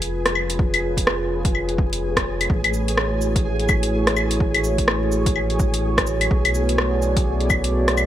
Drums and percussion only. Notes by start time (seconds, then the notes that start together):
0.02 closed hi-hat
0.26 cross-stick, closed hi-hat
0.35 claves
0.50 closed hi-hat
0.59 kick
0.74 closed hi-hat, claves
0.97 kick, closed hi-hat
1.07 cross-stick
1.45 kick, closed hi-hat
1.55 claves
1.69 closed hi-hat
1.78 kick
1.93 closed hi-hat
2.17 kick, cross-stick, closed hi-hat
2.41 closed hi-hat, claves
2.50 kick
2.64 closed hi-hat, claves
2.74 cabasa
2.88 closed hi-hat
2.98 cross-stick
3.21 cabasa
3.36 kick, closed hi-hat
3.59 closed hi-hat
3.69 kick, cabasa, claves
3.83 closed hi-hat
4.07 cross-stick, closed hi-hat
4.17 cabasa, claves
4.31 closed hi-hat
4.40 kick
4.54 closed hi-hat, claves
4.64 cabasa
4.78 kick, closed hi-hat
4.88 cross-stick
5.12 cabasa
5.26 kick, closed hi-hat
5.36 claves
5.50 closed hi-hat
5.59 kick, cabasa
5.74 closed hi-hat
5.98 kick, cross-stick, closed hi-hat
6.07 cabasa
6.21 closed hi-hat, claves
6.31 kick
6.45 closed hi-hat, claves
6.55 cabasa
6.69 closed hi-hat
6.78 cross-stick
7.02 cabasa
7.17 kick, closed hi-hat
7.40 closed hi-hat
7.50 kick, cabasa, claves
7.64 closed hi-hat
7.88 cross-stick, closed hi-hat
7.97 cabasa, claves